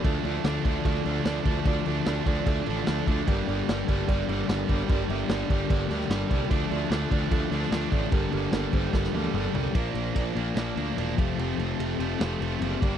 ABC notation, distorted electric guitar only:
X:1
M:4/4
L:1/8
Q:1/4=148
K:Gm
V:1 name="Distorted electric guitar" clef=bass
[D,A,D] [D,A,D] [D,A,D] [D,A,D] [D,A,D] [D,A,D] [D,A,D] [D,A,D] | [D,A,D] [D,A,D] [D,A,D] [D,A,D] [D,A,D] [D,A,D] [D,A,D] [D,A,D] | [G,,D,G,] [G,,D,G,] [G,,D,G,] [G,,D,G,] [G,,D,G,] [G,,D,G,] [G,,D,G,] [G,,D,G,] | [G,,D,G,] [G,,D,G,] [G,,D,G,] [G,,D,G,] [G,,D,G,] [G,,D,G,] [G,,D,G,] [G,,D,G,] |
[D,A,D] [D,A,D] [D,A,D] [D,A,D] [D,A,D] [D,A,D] [D,A,D] [D,A,D] | [G,,D,G,] [G,,D,G,] [G,,D,G,] [G,,D,G,] [G,,D,G,] [G,,D,G,] [G,,D,G,] [G,,D,G,] | [B,,F,B,D]3 [F,B,D] [B,,F,B,D] [F,B,D] [B,,F,B,D] [F,,C,F,A,C] | [F,,C,F,A,C]3 [F,A,C] [C,F,A,C] [F,A,C] [F,,C,F,A,C] [G,,D,G,B,D] |]